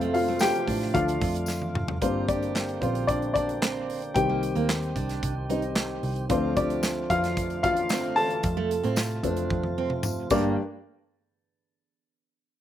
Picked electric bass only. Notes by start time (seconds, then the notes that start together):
Already playing: F2
0.68 A2
0.94 D2
1.21 F2
1.74 F1
2.01 G1
2.82 A#1
4.15 C2
4.56 D#2
4.96 C2
5.23 C2
6.03 C2
6.30 D2
7.10 F2
8.43 F2
8.84 A2
9.23 F2
9.50 F2
10.30 G1